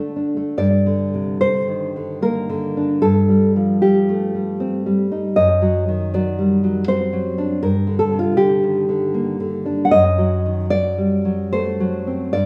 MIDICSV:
0, 0, Header, 1, 2, 480
1, 0, Start_track
1, 0, Key_signature, -2, "minor"
1, 0, Tempo, 813008
1, 336, Time_signature, 3, 2, 24, 8
1, 2251, Tempo, 763359
1, 6091, Tempo, 804290
1, 7605, End_track
2, 0, Start_track
2, 0, Title_t, "Nylon-string guitar"
2, 0, Program_c, 0, 24
2, 0, Note_on_c, 0, 50, 64
2, 0, Note_on_c, 0, 57, 48
2, 0, Note_on_c, 0, 62, 47
2, 89, Note_off_c, 0, 62, 0
2, 96, Note_on_c, 0, 62, 50
2, 210, Note_off_c, 0, 57, 0
2, 217, Note_on_c, 0, 57, 49
2, 311, Note_off_c, 0, 50, 0
2, 338, Note_off_c, 0, 57, 0
2, 338, Note_off_c, 0, 62, 0
2, 339, Note_on_c, 0, 43, 70
2, 341, Note_on_c, 0, 74, 106
2, 509, Note_on_c, 0, 50, 55
2, 673, Note_on_c, 0, 48, 51
2, 807, Note_off_c, 0, 74, 0
2, 830, Note_off_c, 0, 50, 0
2, 831, Note_on_c, 0, 72, 108
2, 837, Note_on_c, 0, 50, 53
2, 989, Note_off_c, 0, 48, 0
2, 992, Note_on_c, 0, 51, 48
2, 1151, Note_off_c, 0, 50, 0
2, 1158, Note_on_c, 0, 50, 46
2, 1289, Note_off_c, 0, 72, 0
2, 1311, Note_on_c, 0, 58, 53
2, 1314, Note_on_c, 0, 70, 98
2, 1466, Note_off_c, 0, 50, 0
2, 1473, Note_on_c, 0, 50, 55
2, 1636, Note_on_c, 0, 62, 51
2, 1702, Note_off_c, 0, 51, 0
2, 1757, Note_off_c, 0, 43, 0
2, 1763, Note_off_c, 0, 70, 0
2, 1782, Note_off_c, 0, 58, 0
2, 1782, Note_on_c, 0, 69, 96
2, 1783, Note_off_c, 0, 50, 0
2, 1784, Note_on_c, 0, 43, 67
2, 1786, Note_off_c, 0, 62, 0
2, 1941, Note_on_c, 0, 55, 52
2, 2103, Note_on_c, 0, 53, 48
2, 2233, Note_off_c, 0, 69, 0
2, 2250, Note_off_c, 0, 55, 0
2, 2254, Note_on_c, 0, 67, 85
2, 2258, Note_on_c, 0, 55, 57
2, 2424, Note_on_c, 0, 57, 53
2, 2577, Note_off_c, 0, 55, 0
2, 2585, Note_on_c, 0, 55, 47
2, 2747, Note_on_c, 0, 60, 59
2, 2825, Note_off_c, 0, 53, 0
2, 2903, Note_off_c, 0, 55, 0
2, 2910, Note_on_c, 0, 55, 53
2, 2959, Note_off_c, 0, 67, 0
2, 3068, Note_off_c, 0, 60, 0
2, 3070, Note_on_c, 0, 63, 53
2, 3148, Note_off_c, 0, 57, 0
2, 3200, Note_off_c, 0, 43, 0
2, 3225, Note_on_c, 0, 75, 98
2, 3226, Note_off_c, 0, 55, 0
2, 3226, Note_off_c, 0, 63, 0
2, 3228, Note_on_c, 0, 42, 71
2, 3386, Note_on_c, 0, 54, 56
2, 3550, Note_off_c, 0, 54, 0
2, 3552, Note_on_c, 0, 51, 43
2, 3687, Note_off_c, 0, 75, 0
2, 3713, Note_on_c, 0, 54, 56
2, 3716, Note_on_c, 0, 74, 88
2, 3869, Note_on_c, 0, 55, 52
2, 4019, Note_off_c, 0, 54, 0
2, 4026, Note_on_c, 0, 54, 49
2, 4168, Note_off_c, 0, 74, 0
2, 4178, Note_off_c, 0, 51, 0
2, 4181, Note_on_c, 0, 60, 53
2, 4181, Note_on_c, 0, 72, 102
2, 4329, Note_off_c, 0, 54, 0
2, 4336, Note_on_c, 0, 54, 53
2, 4495, Note_on_c, 0, 62, 58
2, 4570, Note_off_c, 0, 55, 0
2, 4625, Note_off_c, 0, 42, 0
2, 4627, Note_off_c, 0, 72, 0
2, 4646, Note_off_c, 0, 54, 0
2, 4646, Note_off_c, 0, 60, 0
2, 4649, Note_off_c, 0, 62, 0
2, 4649, Note_on_c, 0, 43, 71
2, 4649, Note_on_c, 0, 70, 95
2, 4802, Note_on_c, 0, 50, 57
2, 4875, Note_off_c, 0, 70, 0
2, 4878, Note_on_c, 0, 69, 90
2, 4964, Note_on_c, 0, 48, 50
2, 5001, Note_off_c, 0, 69, 0
2, 5003, Note_on_c, 0, 65, 88
2, 5113, Note_off_c, 0, 50, 0
2, 5116, Note_on_c, 0, 67, 95
2, 5120, Note_on_c, 0, 50, 58
2, 5124, Note_off_c, 0, 65, 0
2, 5280, Note_off_c, 0, 48, 0
2, 5282, Note_on_c, 0, 51, 51
2, 5434, Note_off_c, 0, 50, 0
2, 5441, Note_on_c, 0, 50, 50
2, 5602, Note_on_c, 0, 58, 61
2, 5758, Note_off_c, 0, 50, 0
2, 5766, Note_on_c, 0, 50, 52
2, 5817, Note_off_c, 0, 67, 0
2, 5926, Note_on_c, 0, 62, 56
2, 6007, Note_off_c, 0, 51, 0
2, 6046, Note_on_c, 0, 78, 81
2, 6065, Note_off_c, 0, 43, 0
2, 6087, Note_off_c, 0, 58, 0
2, 6087, Note_on_c, 0, 75, 114
2, 6088, Note_on_c, 0, 42, 73
2, 6089, Note_off_c, 0, 50, 0
2, 6089, Note_off_c, 0, 62, 0
2, 6089, Note_off_c, 0, 78, 0
2, 6247, Note_on_c, 0, 54, 53
2, 6412, Note_on_c, 0, 51, 50
2, 6540, Note_off_c, 0, 75, 0
2, 6556, Note_off_c, 0, 54, 0
2, 6559, Note_on_c, 0, 74, 118
2, 6560, Note_off_c, 0, 51, 0
2, 6563, Note_on_c, 0, 54, 55
2, 6724, Note_on_c, 0, 55, 51
2, 6878, Note_off_c, 0, 54, 0
2, 6885, Note_on_c, 0, 54, 53
2, 7027, Note_off_c, 0, 74, 0
2, 7049, Note_on_c, 0, 72, 108
2, 7052, Note_on_c, 0, 57, 57
2, 7207, Note_off_c, 0, 54, 0
2, 7214, Note_on_c, 0, 54, 57
2, 7376, Note_on_c, 0, 60, 54
2, 7450, Note_off_c, 0, 55, 0
2, 7504, Note_off_c, 0, 42, 0
2, 7510, Note_off_c, 0, 72, 0
2, 7529, Note_on_c, 0, 74, 107
2, 7531, Note_off_c, 0, 54, 0
2, 7531, Note_off_c, 0, 57, 0
2, 7532, Note_off_c, 0, 60, 0
2, 7533, Note_on_c, 0, 43, 66
2, 7605, Note_off_c, 0, 43, 0
2, 7605, Note_off_c, 0, 74, 0
2, 7605, End_track
0, 0, End_of_file